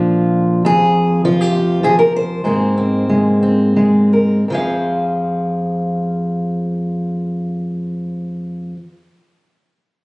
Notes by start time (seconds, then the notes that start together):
Already playing: A#2 F3 D4 F4
0.65 F2 G#4
1.25 F3 F4
1.41 G4
1.55 F4
1.83 F3 G#4
1.99 A#4
2.16 C5
2.44 G#2 G#3 A#3 C4
2.77 C4
3.09 G#3
3.43 C4
3.76 G#3
4.13 A#4
4.48 F2 F3
4.52 G#4 C5 F5